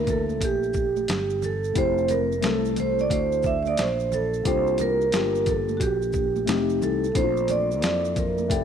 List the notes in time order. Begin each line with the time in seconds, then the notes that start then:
Already playing: D2 A3 A#3 D4 E4
0.05 A#4, kick, closed hi-hat, low conga, shaker, maracas
0.10 A4
0.29 high conga, maracas
0.41 A#1 G4, kick, closed hi-hat, maracas
0.63 maracas
0.73 kick, shaker, maracas
0.96 high conga, maracas
1.08 G1, snare, closed hi-hat, maracas
1.30 maracas
1.42 A4, low conga, maracas, shaker
1.64 maracas
1.74 F1 A3 C4 E4 G4, kick, closed hi-hat, maracas
1.78 C5
1.98 maracas
2.08 A#4, closed hi-hat, high conga, low conga, shaker, maracas
2.32 maracas
2.41 C2 A3 C4 E4, snare, closed hi-hat, maracas
2.45 A4
2.65 maracas
2.76 C5, closed hi-hat, low conga, shaker, maracas
2.99 D5, high conga, maracas
3.10 D2 C5, kick, closed hi-hat, maracas
3.32 maracas
3.43 E5, kick, shaker, maracas
3.63 E5, high conga, maracas
3.67 D5
3.77 A#1 C5, snare, closed hi-hat, maracas
3.99 maracas
4.12 A4, low conga, maracas, shaker
4.34 maracas
4.43 C2 A#3 D4 F4 G4 C5, kick, closed hi-hat, maracas
4.67 maracas
4.78 A#4, closed hi-hat, high conga, low conga, shaker, maracas
5.01 maracas
5.11 G1 A#3 D4 F4 G4, snare, closed hi-hat, maracas
5.35 maracas
5.46 A4, kick, closed hi-hat, low conga, shaker, maracas
5.69 high conga, maracas
5.77 A#1 F#4, kick, closed hi-hat
5.81 G4, maracas
6.02 maracas
6.12 kick, shaker, maracas
6.36 high conga, maracas
6.46 F1 A3 C4 D#4, snare, closed hi-hat, maracas
6.50 G4
6.70 maracas
6.82 C2 A4, low conga, maracas, shaker
7.04 maracas
7.13 A#1 A3 C4 D4 E4 C5, kick, closed hi-hat, maracas
7.23 F4
7.37 maracas
7.48 D5, closed hi-hat, high conga, low conga, shaker, maracas
7.71 maracas
7.80 F2 A#3 C4 D4, snare, closed hi-hat, maracas
7.84 E4
8.05 maracas
8.16 A#4, kick, closed hi-hat, low conga, shaker, maracas
8.38 high conga, maracas
8.48 F1 A3 C4 E4 A4, kick, closed hi-hat, maracas
8.52 G4